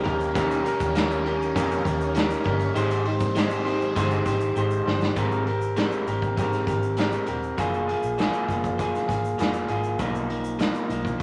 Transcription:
Already playing: string machine D#3 A#3 G4
0.04 fingered electric bass D#2, string machine C#4, clean electric guitar C#4 G4 A#4, kick, closed hi-hat
0.20 shaker
0.34 clean electric guitar D#3 C#4 G4 A#4, kick, closed hi-hat, shaker
0.51 closed hi-hat, shaker
0.64 clean electric guitar C#4 G4 A#4, closed hi-hat, shaker
0.80 fingered electric bass D#2, kick, shaker
0.95 clean electric guitar D#3 C#4 G4 A#4, snare, closed hi-hat, shaker
1.11 shaker
1.25 clean electric guitar C#4 G4 A#4, closed hi-hat
1.42 shaker
1.55 fingered electric bass F2, clean electric guitar D#3 C#4 G4 A#4, kick, closed hi-hat, shaker
1.71 shaker
1.84 fingered electric bass D#2, clean electric guitar C#4 G4 A#4, kick, closed hi-hat, shaker
2.01 shaker
2.15 clean electric guitar D#3 C#4 G4 A#4, snare, closed hi-hat, shaker
2.30 shaker
2.44 fingered electric bass G1, clean electric guitar C#4 G4 A#4, kick, closed hi-hat
2.59 closed hi-hat, shaker
2.74 fingered electric bass G#1, string machine D#3 G#3 C4, clean electric guitar G#3 D#4 G4 C5, closed hi-hat, shaker
2.91 closed hi-hat, shaker
3.05 clean electric guitar D#4 G4 C5, closed hi-hat
3.20 kick, shaker
3.35 clean electric guitar G#3 D#4 G4 C5, snare, closed hi-hat, shaker
3.50 shaker
3.65 clean electric guitar D#4 G4 C5, closed hi-hat
3.81 shaker
3.96 fingered electric bass G1, clean electric guitar G#3 D#4 G4 C5, kick, closed hi-hat, shaker
4.11 shaker
4.26 fingered electric bass G#1, clean electric guitar D#4 G4 C5, kick, closed hi-hat, shaker
4.41 shaker
4.56 fingered electric bass G#1, clean electric guitar G#3 D#4 G4 C5, shaker
4.71 shaker
4.85 fingered electric bass G1, clean electric guitar D#4 G4 C5, snare
5.01 snare, shaker
5.16 fingered electric bass G#1, clean electric guitar G#3 C4 G4 A#4, kick, closed hi-hat, shaker
5.32 shaker
5.46 clean electric guitar C4 G4 A#4, closed hi-hat
5.61 shaker
5.76 clean electric guitar G#3 C4 G4 A#4, snare, closed hi-hat, shaker
5.92 shaker
6.07 fingered electric bass G#1, clean electric guitar C4 G4 A#4, closed hi-hat, shaker
6.22 kick, shaker
6.37 fingered electric bass G#2, clean electric guitar G#3 C4 G4 A#4, kick, closed hi-hat, shaker
6.53 snare, shaker
6.67 fingered electric bass G#1, clean electric guitar C4 G4 A#4, kick, closed hi-hat, shaker
6.83 shaker
6.97 clean electric guitar G#3 C4 G4 A#4, snare, closed hi-hat, shaker
7.12 shaker
7.26 fingered electric bass D#1, clean electric guitar C4 G4 A#4, closed hi-hat, shaker
7.43 shaker
7.58 fingered electric bass F#1, clean electric guitar F#3 A#3 F4 G#4, kick, closed hi-hat, shaker
7.74 shaker
7.87 clean electric guitar A#3 F4 G#4, closed hi-hat
8.03 fingered electric bass A#1, shaker
8.18 clean electric guitar F#3 A#3 F4 G#4, snare, closed hi-hat, shaker
8.33 shaker
8.48 fingered electric bass F#1, clean electric guitar A#3 F4 G#4, kick, closed hi-hat, shaker
8.64 kick, shaker
8.78 clean electric guitar F#3 A#3 F4 G#4, kick, closed hi-hat, shaker
8.95 snare, shaker
9.08 fingered electric bass G#1, clean electric guitar A#3 F4 G#4, kick, closed hi-hat, shaker
9.25 shaker
9.38 fingered electric bass F1, clean electric guitar F#3 A#3 F4 G#4, snare, closed hi-hat, shaker
9.53 shaker
9.68 fingered electric bass G#1, clean electric guitar A#3 F4 G#4, closed hi-hat, shaker
9.84 shaker
9.99 fingered electric bass B1, clean electric guitar B2 F3 A#3 D#4, kick, closed hi-hat, shaker
10.15 shaker
10.29 clean electric guitar F3 A#3 D#4, closed hi-hat
10.44 shaker
10.59 clean electric guitar B2 F3 A#3 D#4, snare, closed hi-hat, shaker
10.75 shaker
10.88 fingered electric bass B1, clean electric guitar F3 A#3 D#4, closed hi-hat, shaker
11.05 kick, shaker
11.18 clean electric guitar B2 F3

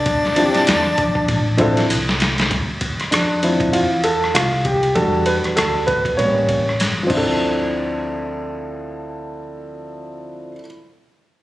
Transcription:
Already playing: tenor saxophone D4
0.06 upright bass D2, kick, ride
0.25 snare
0.35 grand piano F3 C4 D4 E4 G4, ride
0.55 muted upright bass stroke, snare, ride
0.67 upright bass E2, snare, hi-hat pedal, ride
0.98 upright bass F2, kick, ride
1.15 kick
1.28 upright bass A1, kick, ride
1.57 grand piano F3 C4 D4 E4 A4, kick, ride
1.77 snare, ride
1.90 upright bass C2, hi-hat pedal, ride
2.09 snare
2.20 snare, ride
2.38 snare, ride
2.51 upright bass D2, kick, ride
2.81 kick, ride
2.99 muted upright bass stroke, cross-stick, ride
3.11 upright bass F2, grand piano D4, cross-stick, hi-hat pedal, ride
3.43 grand piano F3 C4 E4, ride
3.60 kick, ride
3.73 upright bass E2, grand piano F4, ride
4.04 grand piano A4, ride
4.24 cross-stick
4.34 upright bass C2, grand piano F4, cross-stick, hi-hat pedal, ride
4.65 grand piano G4, kick, ride
4.83 ride
4.95 upright bass E2, grand piano G3 D4 F#4 A4, kick, ride
5.26 grand piano B4, ride
5.44 muted upright bass stroke, cross-stick, ride
5.56 upright bass D2, grand piano A4, cross-stick, hi-hat pedal, ride
5.87 grand piano B4, kick, ride
6.05 kick, ride
6.17 upright bass A1, grand piano G3 A#3 C#4 C#5, ride
6.49 kick, ride
6.69 cross-stick
6.80 upright bass G1, snare, hi-hat pedal, ride
7.03 grand piano F3 C4
7.10 upright bass D2, grand piano D4 E4, kick, crash
7.17 grand piano A4

